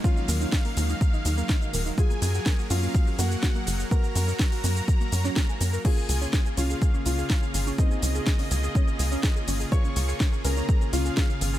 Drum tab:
CC |----------------|----------------|----------------|x---------------|
HH |--o--oo---o---o-|--o---o---o---o-|--o--oo---o---o-|--o---o---o---o-|
SH |xxxxxxxxxxxxxxxx|xxxxxxxxxxxxxxxx|xxxxxxxxxxxxxxxx|xxxxxxxxxxxxxxxx|
SD |----o-------o---|----o-------o---|----o------oo---|----o-------o---|
BD |o---o---o---o---|o---o---o---o---|o---o---o---o---|o---o---o---o---|

CC |----------------|----------------|
HH |--o--oo---o---o-|--o---o---o---o-|
SH |xxxxxxxxxxxxxxxx|xxxxxxxxxxxxxxxx|
SD |----o-------o---|----o-------o---|
BD |o---o---o---o---|o---o---o---o---|